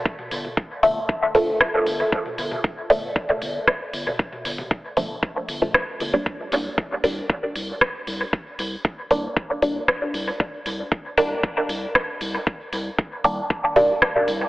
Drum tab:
HH |--o---o---o---o-|--o---o---o---o-|--o---o---o---o-|--o---o---o---o-|
SD |------------r---|------------r---|------------r---|------------r---|
T1 |-o-o------------|-o-o-----------o|-o-o------------|----------------|
T2 |------o---------|---o-----o------|---o--o---------|----------------|
BD |o---o---o---o---|o---o---o---o---|o---o---o---o---|o---o---o---o---|

HH |--o---o---o---o-|--o---o---o---o-|--o---o---o---o-|
SD |------------r---|------------r---|------------r---|
T1 |----------------|----------------|----------------|
T2 |----------------|----------------|----------------|
BD |o---o---o---o---|o---o---o---o---|o---o---o---o---|